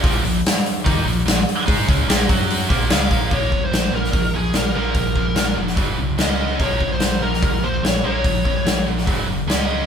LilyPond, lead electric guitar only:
\new Staff \with { instrumentName = "Lead electric guitar" } { \time 4/4 \key bes \minor \tempo 4 = 146 r1 | r2. f''4 | des''8. c''8. bes'4 aes'8 bes'8 bes'8~ | bes'4. r4. ees''4 |
des''8. c''8. bes'4 c''8 des''8 des''8~ | des''4. r4. ees''4 | }